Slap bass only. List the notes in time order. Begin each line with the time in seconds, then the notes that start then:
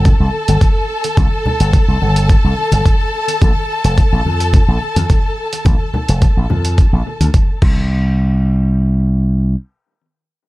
Already playing: G1
0.20 C2
0.48 G1
1.17 C2
1.60 G1
1.88 C2
2.01 G1
2.44 C2
2.72 G1
3.42 A#1
3.84 F1
4.12 A#1
4.26 F2
4.68 A#1
4.96 F2
5.66 A#1
6.09 F1
6.37 A#1
6.50 F2
6.93 A#1
7.21 D2
7.62 C2